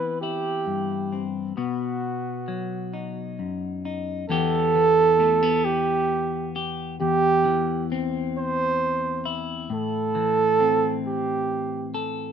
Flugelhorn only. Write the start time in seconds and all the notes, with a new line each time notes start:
Already playing: B4
0.21 G4
1.57 F#4
4.29 A4
5.65 G4
7.01 G4
8.38 C5
9.74 A4
11.07 G4